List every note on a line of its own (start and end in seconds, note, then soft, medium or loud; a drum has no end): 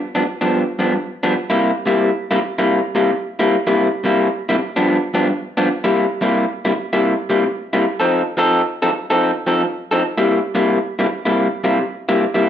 0.15 0.24 G2 medium
0.15 0.24 F3 medium
0.15 0.24 B3 medium
0.15 0.25 D4 loud
0.25 muted clean electric guitar stroke soft
0.41 0.63 G2 medium
0.41 0.62 F3 medium
0.41 0.62 B3 medium
0.41 0.62 D4 medium
0.79 0.96 G2 medium
0.79 0.95 F3 medium
0.79 0.95 B3 medium
0.79 0.95 D4 medium
0.96 muted clean electric guitar stroke soft
1.23 1.34 G2 medium
1.23 1.34 F3 medium
1.23 1.34 B3 loud
1.23 1.33 D4 loud
1.50 1.71 C3 medium
1.50 1.71 G3 medium
1.50 1.71 A#3 loud
1.50 1.70 E4 loud
1.86 2.09 C3 medium
1.86 2.10 G3 medium
1.86 2.10 A#3 medium
1.86 2.10 E4 loud
2.31 2.40 C3 medium
2.31 2.40 G3 medium
2.31 2.41 A#3 medium
2.31 2.41 E4 medium
2.41 muted clean electric guitar stroke medium
2.58 2.80 C3 medium
2.58 2.79 G3 medium
2.58 2.79 A#3 medium
2.58 2.79 E4 medium
2.95 3.13 C3 medium
2.95 3.12 G3 medium
2.95 3.12 A#3 medium
2.95 3.12 E4 medium
3.13 muted clean electric guitar stroke medium
3.39 3.56 C3 medium
3.39 3.56 G3 medium
3.39 3.56 A#3 medium
3.39 3.55 E4 loud
3.67 3.88 C3 medium
3.67 3.88 G3 medium
3.67 3.88 A#3 medium
3.67 3.88 E4 loud
4.04 4.27 C3 medium
4.04 4.27 G3 medium
4.04 4.27 A#3 medium
4.04 4.27 E4 medium
4.49 4.60 C3 medium
4.49 4.59 G3 medium
4.49 4.59 A#3 medium
4.49 4.59 E4 loud
4.58 muted clean electric guitar stroke soft
4.76 4.97 G2 medium
4.76 4.97 F3 medium
4.76 4.97 B3 medium
4.76 4.96 D4 medium
5.14 5.31 G2 medium
5.14 5.30 F3 medium
5.14 5.30 B3 medium
5.14 5.29 D4 medium
5.30 muted clean electric guitar stroke medium
5.57 5.68 G2 medium
5.57 5.68 F3 medium
5.57 5.68 B3 medium
5.57 5.67 D4 medium
5.84 6.05 C3 medium
5.84 6.05 G3 medium
5.84 6.05 A#3 medium
5.84 6.05 E4 medium
6.21 6.44 C3 medium
6.21 6.44 G3 medium
6.21 6.44 A#3 medium
6.21 6.44 E4 medium
6.65 6.74 C3 medium
6.65 6.74 G3 medium
6.65 6.74 A#3 medium
6.65 6.75 E4 medium
6.76 muted clean electric guitar stroke medium
6.93 7.14 C3 medium
6.93 7.14 G3 medium
6.93 7.13 A#3 medium
6.93 7.13 E4 medium
7.30 7.47 C3 medium
7.30 7.46 G3 medium
7.30 7.46 A#3 medium
7.30 7.45 E4 medium
7.47 muted clean electric guitar stroke medium
7.73 7.85 C3 medium
7.73 7.84 G3 medium
7.73 7.84 A#3 medium
7.73 7.84 E4 medium
8.00 8.22 F3 medium
8.00 8.22 C4 medium
8.00 8.21 D#4 medium
8.00 8.21 A4 medium
8.37 8.60 F3 medium
8.37 8.61 C4 medium
8.37 8.61 D#4 medium
8.37 8.61 A4 loud
8.82 8.91 F3 medium
8.82 8.92 C4 medium
8.82 8.92 D#4 medium
8.82 8.92 A4 loud
8.92 muted clean electric guitar stroke soft
9.10 9.31 F3 medium
9.10 9.31 C4 medium
9.10 9.31 D#4 medium
9.10 9.31 A4 loud
9.47 9.64 F3 medium
9.47 9.64 C4 medium
9.47 9.64 D#4 medium
9.47 9.63 A4 medium
9.65 muted clean electric guitar stroke medium
9.91 10.02 F3 medium
9.91 10.02 C4 medium
9.91 10.02 D#4 medium
9.91 10.02 A4 medium
10.18 10.39 C3 medium
10.18 10.39 G3 medium
10.18 10.39 A#3 medium
10.18 10.38 E4 loud
10.55 10.78 C3 medium
10.55 10.78 G3 medium
10.55 10.78 A#3 loud
10.55 10.78 E4 medium
10.99 11.08 C3 medium
10.99 11.08 G3 medium
10.99 11.08 A#3 medium
10.99 11.09 E4 medium
11.25 11.47 C3 medium
11.25 11.47 G3 medium
11.25 11.47 A#3 medium
11.25 11.47 E4 medium
11.64 11.81 C3 medium
11.64 11.81 G3 medium
11.64 11.80 A#3 medium
11.64 11.80 E4 medium
11.81 muted clean electric guitar stroke soft
12.09 12.24 C3 medium
12.09 12.24 G3 medium
12.09 12.24 A#3 medium
12.09 12.24 E4 medium
12.34 12.49 C3 medium
12.34 12.49 G3 medium
12.34 12.49 A#3 medium
12.34 12.49 E4 loud